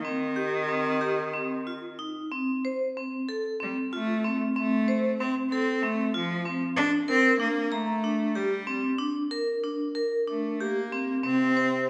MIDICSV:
0, 0, Header, 1, 4, 480
1, 0, Start_track
1, 0, Tempo, 645856
1, 36, Time_signature, 7, 3, 24, 8
1, 2676, Tempo, 632911
1, 6036, Tempo, 643087
1, 8921, End_track
2, 0, Start_track
2, 0, Title_t, "Vibraphone"
2, 0, Program_c, 0, 11
2, 35, Note_on_c, 0, 60, 65
2, 213, Note_off_c, 0, 60, 0
2, 269, Note_on_c, 0, 67, 63
2, 448, Note_off_c, 0, 67, 0
2, 511, Note_on_c, 0, 60, 58
2, 689, Note_off_c, 0, 60, 0
2, 752, Note_on_c, 0, 67, 64
2, 931, Note_off_c, 0, 67, 0
2, 992, Note_on_c, 0, 60, 55
2, 1172, Note_off_c, 0, 60, 0
2, 1240, Note_on_c, 0, 65, 58
2, 1419, Note_off_c, 0, 65, 0
2, 1477, Note_on_c, 0, 63, 60
2, 1658, Note_off_c, 0, 63, 0
2, 1721, Note_on_c, 0, 60, 71
2, 1900, Note_off_c, 0, 60, 0
2, 1967, Note_on_c, 0, 72, 66
2, 2144, Note_off_c, 0, 72, 0
2, 2208, Note_on_c, 0, 60, 57
2, 2384, Note_off_c, 0, 60, 0
2, 2442, Note_on_c, 0, 69, 71
2, 2619, Note_off_c, 0, 69, 0
2, 2677, Note_on_c, 0, 60, 55
2, 2858, Note_off_c, 0, 60, 0
2, 2924, Note_on_c, 0, 65, 65
2, 3102, Note_off_c, 0, 65, 0
2, 3163, Note_on_c, 0, 60, 68
2, 3342, Note_off_c, 0, 60, 0
2, 3405, Note_on_c, 0, 60, 73
2, 3584, Note_off_c, 0, 60, 0
2, 3647, Note_on_c, 0, 72, 72
2, 3824, Note_off_c, 0, 72, 0
2, 3891, Note_on_c, 0, 60, 66
2, 4066, Note_off_c, 0, 60, 0
2, 4133, Note_on_c, 0, 69, 71
2, 4306, Note_off_c, 0, 69, 0
2, 4368, Note_on_c, 0, 60, 62
2, 4543, Note_off_c, 0, 60, 0
2, 4603, Note_on_c, 0, 65, 70
2, 4779, Note_off_c, 0, 65, 0
2, 4841, Note_on_c, 0, 60, 67
2, 5017, Note_off_c, 0, 60, 0
2, 5076, Note_on_c, 0, 62, 78
2, 5255, Note_off_c, 0, 62, 0
2, 5316, Note_on_c, 0, 70, 67
2, 5494, Note_off_c, 0, 70, 0
2, 5555, Note_on_c, 0, 62, 69
2, 5735, Note_off_c, 0, 62, 0
2, 5798, Note_on_c, 0, 82, 73
2, 5977, Note_off_c, 0, 82, 0
2, 6043, Note_on_c, 0, 62, 65
2, 6218, Note_off_c, 0, 62, 0
2, 6277, Note_on_c, 0, 67, 62
2, 6454, Note_off_c, 0, 67, 0
2, 6512, Note_on_c, 0, 60, 70
2, 6691, Note_off_c, 0, 60, 0
2, 6747, Note_on_c, 0, 62, 75
2, 6928, Note_off_c, 0, 62, 0
2, 6991, Note_on_c, 0, 70, 65
2, 7171, Note_off_c, 0, 70, 0
2, 7233, Note_on_c, 0, 62, 64
2, 7412, Note_off_c, 0, 62, 0
2, 7469, Note_on_c, 0, 70, 72
2, 7651, Note_off_c, 0, 70, 0
2, 7711, Note_on_c, 0, 62, 58
2, 7893, Note_off_c, 0, 62, 0
2, 7957, Note_on_c, 0, 67, 71
2, 8137, Note_off_c, 0, 67, 0
2, 8195, Note_on_c, 0, 60, 65
2, 8376, Note_off_c, 0, 60, 0
2, 8428, Note_on_c, 0, 60, 72
2, 8611, Note_off_c, 0, 60, 0
2, 8676, Note_on_c, 0, 72, 67
2, 8856, Note_off_c, 0, 72, 0
2, 8921, End_track
3, 0, Start_track
3, 0, Title_t, "Cello"
3, 0, Program_c, 1, 42
3, 22, Note_on_c, 1, 51, 84
3, 1439, Note_off_c, 1, 51, 0
3, 2696, Note_on_c, 1, 55, 62
3, 2801, Note_off_c, 1, 55, 0
3, 2926, Note_on_c, 1, 57, 77
3, 3260, Note_off_c, 1, 57, 0
3, 3408, Note_on_c, 1, 57, 81
3, 3855, Note_off_c, 1, 57, 0
3, 3889, Note_on_c, 1, 60, 70
3, 3995, Note_off_c, 1, 60, 0
3, 4119, Note_on_c, 1, 60, 77
3, 4359, Note_on_c, 1, 57, 80
3, 4370, Note_off_c, 1, 60, 0
3, 4597, Note_off_c, 1, 57, 0
3, 4608, Note_on_c, 1, 53, 83
3, 4936, Note_off_c, 1, 53, 0
3, 5076, Note_on_c, 1, 62, 93
3, 5183, Note_off_c, 1, 62, 0
3, 5321, Note_on_c, 1, 60, 99
3, 5541, Note_off_c, 1, 60, 0
3, 5559, Note_on_c, 1, 58, 81
3, 5797, Note_on_c, 1, 57, 80
3, 5808, Note_off_c, 1, 58, 0
3, 6276, Note_on_c, 1, 55, 76
3, 6288, Note_off_c, 1, 57, 0
3, 6634, Note_off_c, 1, 55, 0
3, 7729, Note_on_c, 1, 57, 58
3, 7965, Note_on_c, 1, 58, 70
3, 7976, Note_off_c, 1, 57, 0
3, 8324, Note_off_c, 1, 58, 0
3, 8439, Note_on_c, 1, 60, 89
3, 8921, Note_off_c, 1, 60, 0
3, 8921, End_track
4, 0, Start_track
4, 0, Title_t, "French horn"
4, 0, Program_c, 2, 60
4, 8440, Note_on_c, 2, 48, 80
4, 8921, Note_off_c, 2, 48, 0
4, 8921, End_track
0, 0, End_of_file